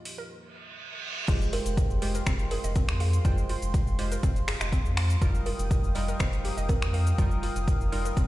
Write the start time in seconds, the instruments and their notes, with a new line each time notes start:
Already playing: analog synth pad F3 A#3 D#4 F4 G4 D#5, synth keys F3 A#3 F4 G4 D#5
0.05 open hi-hat
0.18 synth arpeggio sound A#4
0.30 reverse cymbal
1.28 analog synth bass F1, analog synth pad G#3 F5 G5 C6, synth keys G#3 F4 G4 C5, synth arpeggio sound F4, kalimba G#4, kick, closed hi-hat, crash, cabasa
1.41 cabasa
1.53 synth arpeggio sound F4, kalimba A#4, open hi-hat
1.66 analog synth bass F1, closed hi-hat, cabasa
1.77 kick, closed hi-hat, cabasa
1.90 analog synth bass F1, cabasa
2.02 synth keys G#3 F4 G4 C5, kalimba C5, open hi-hat
2.15 synth arpeggio sound A#4, closed hi-hat, cabasa
2.26 analog synth bass F1, synth arpeggio sound C4, finger snap, kick, closed hi-hat, cabasa
2.39 closed hi-hat, cabasa
2.51 synth arpeggio sound G#4, kalimba A#4, open hi-hat
2.64 analog synth bass F1, synth arpeggio sound D#5, closed hi-hat, cabasa
2.76 synth arpeggio sound C4, kick, closed hi-hat, cabasa
2.89 analog synth bass F2, finger snap, cabasa
3.00 kalimba G#4, synth arpeggio sound F5, open hi-hat
3.13 closed hi-hat, cabasa
3.25 analog synth bass F1, synth keys G#3 F4 C5 G5, synth arpeggio sound F4, kick, closed hi-hat, cabasa
3.38 cabasa
3.49 synth arpeggio sound F4, open hi-hat
3.62 analog synth bass F1, closed hi-hat, cabasa
3.74 kick, closed hi-hat, cabasa
3.87 analog synth bass F1, cabasa
3.99 synth keys G#3 F4 G4 C5, open hi-hat
4.12 synth arpeggio sound A#4, closed hi-hat, cabasa
4.23 analog synth bass F1, synth arpeggio sound C4, kick, closed hi-hat, cabasa
4.36 closed hi-hat, cabasa
4.48 synth arpeggio sound G#4, finger snap, open hi-hat
4.61 analog synth bass F1, synth arpeggio sound D#5, finger snap, closed hi-hat, cabasa
4.72 synth arpeggio sound C4, kick, closed hi-hat, cabasa
4.85 analog synth bass F2, cabasa
4.97 synth arpeggio sound F5, finger snap, open hi-hat
5.10 closed hi-hat, cabasa
5.22 analog synth bass F1, synth keys G3 D#4 F4 A#4, synth arpeggio sound F4, analog synth pad A#4 G5 D#6, kick, closed hi-hat, cabasa
5.35 cabasa
5.46 synth arpeggio sound F4, kalimba A#4, open hi-hat
5.59 analog synth bass F1, closed hi-hat, cabasa
5.71 kick, closed hi-hat, cabasa
5.84 analog synth bass F1, cabasa
5.95 synth keys G3 D#4 F4 A#4, kalimba D#5, open hi-hat
6.08 synth arpeggio sound A#4, closed hi-hat, cabasa
6.20 analog synth bass F1, synth arpeggio sound C4, kalimba C5, finger snap, kick, closed hi-hat, cabasa
6.33 closed hi-hat, cabasa
6.45 synth arpeggio sound G4, open hi-hat
6.57 analog synth bass F1, synth arpeggio sound D#5, closed hi-hat, cabasa
6.69 synth arpeggio sound C4, kalimba A#4, kick, closed hi-hat, cabasa
6.82 analog synth bass F2, finger snap, cabasa
6.93 kalimba A#4, synth arpeggio sound F5, open hi-hat
7.07 closed hi-hat, cabasa
7.18 analog synth bass F1, synth keys G3 D#4 F4 A#4, synth arpeggio sound F4, kick, closed hi-hat, cabasa
7.31 cabasa
7.43 synth arpeggio sound F4, open hi-hat
7.56 analog synth bass F1, closed hi-hat, cabasa
7.68 kick, closed hi-hat, cabasa
7.81 analog synth bass F1, cabasa
7.92 synth keys G3 D#4 F4 A#4, open hi-hat
8.05 synth arpeggio sound A#4, closed hi-hat, cabasa
8.17 analog synth bass F1, synth arpeggio sound C4, kick, closed hi-hat, cabasa